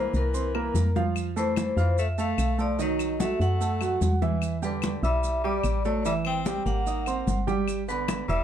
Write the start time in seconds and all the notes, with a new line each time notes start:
Already playing: E3 A#3 A#4 C5 A#5
0.14 C2 E3 A#4, high conga, maracas
0.34 C4 C5 C6, high conga, maracas
0.55 A#3 A#4 A#5, high conga, claves
0.74 F2, high conga, maracas
0.96 F3 F4 F5, high conga, maracas
1.16 high conga, claves, maracas
1.36 E3 A3 A4 C5 A5, high conga, maracas
1.56 high conga, claves, maracas
1.77 F2 E3 F4 C5 F5 F6, high conga, maracas
1.98 A3 E5, high conga, maracas
2.18 A3 A4 F5 A5, high conga, maracas
2.38 B1, high conga, claves, maracas
2.58 F3 A3 A4 D5 A5, high conga, maracas
2.79 D#3 F#3 D#4 D#5, high conga, maracas
2.99 high conga, claves, maracas
3.19 F#3 A3 F#4 E5 F#5, high conga, maracas
3.40 F#2 A3 F#5, high conga, maracas
3.61 A3 A4 A5, high conga, maracas
3.81 F#3 F#4 F#5, high conga, claves, maracas
4.01 E2, high conga, maracas
4.22 E3 E4 E5, high conga, maracas
4.42 high conga, claves, maracas
4.62 D3 G3 G4 B4 G5, high conga, maracas
4.82 high conga, claves, maracas
5.03 B1 G3 E4 E5 E6, high conga, maracas
5.24 high conga, maracas
5.44 G3 G4 D5 G5, high conga
5.64 A1, high conga, claves, maracas
5.85 F#3 A3 A4 D5 A5, high conga, maracas
6.05 E3 G3 E4 E5, high conga, maracas
6.25 C4 G5, high conga, claves
6.46 G3 G4 G5, high conga, maracas
6.65 G#1 A#3 F#5, high conga, maracas
6.86 D#4 D#5 D#6, high conga, maracas
7.06 C4 C5 C6, high conga, claves, maracas
7.27 G1, high conga, maracas
7.47 G3 G4 G5, high conga, maracas
7.68 high conga, claves, maracas
7.88 D3 B3 B4 B5, high conga, maracas
8.08 high conga, claves, maracas
8.28 E1 G3 E4 E5 E6, high conga, maracas